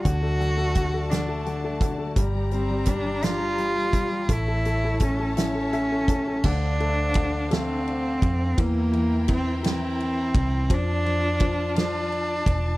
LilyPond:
<<
  \new Staff \with { instrumentName = "String section" } { \time 6/8 \key d \minor \tempo 4. = 57 << { <fis' a''>2. | <g' bes''>2. | <e' a''>2. | <d' f''>2. |
<e' g''>2. | <f' a''>2. | } \\ { d''2.~ | d''2. | cis''2. | c''2. |
bes'2. | d''2. | } >> }
  \new Staff \with { instrumentName = "Cello" } { \time 6/8 \key d \minor fis'4. d'4 r8 | r8 c'8 d'8 f'4. | e'4 cis'8 cis'4. | d'4. c'4. |
bes4 c'8 c'4. | d'4. d'4. | }
  \new Staff \with { instrumentName = "Upright piano" } { \time 6/8 \key d \minor r2. | r2. | r2 e''8 a''8 | r2. |
r2. | r2. | }
  \new Staff \with { instrumentName = "Upright piano" } { \clef bass \time 6/8 \key d \minor d16 a16 d16 a16 d16 a16 d16 a16 d16 a16 d16 a16 | g16 g16 g16 g16 g16 g16 d'16 g16 g16 g16 g16 g16 | a16 a16 a16 a16 a16 a16 e'16 a16 a16 a16 a16 a16 | d8 a8 d8 a4. |
e8 e8 e8 e4. | f8 f8 f8 f4. | }
  \new Staff \with { instrumentName = "Fingered electric bass" } { \clef bass \time 6/8 \key d \minor d,2. | g,,2. | a,,2. | d,2~ d,8 f,8 |
e,2~ e,8 c,8 | f,2~ f,8 e,,8 | }
  \new DrumStaff \with { instrumentName = "Drums" } \drummode { \time 6/8 <hh bd>8 hh8 <hh bd>8 <hh sn>8 hh8 <hh bd>8 | <hh bd>8 hh8 <hh bd>8 <hh sn>8 hh8 <hh bd>8 | <hh bd>8 hh8 <hh bd>8 <hh sn>8 hh8 <hh bd>8 | <cymc bd>8 cymr8 <bd cymr>8 <cymr sn>8 cymr8 <bd cymr>8 |
<bd cymr>8 cymr8 <bd cymr>8 <cymr sn>8 cymr8 <bd cymr>8 | <bd cymr>8 cymr8 <bd cymr>8 <cymr sn>8 cymr8 <bd cymr>8 | }
>>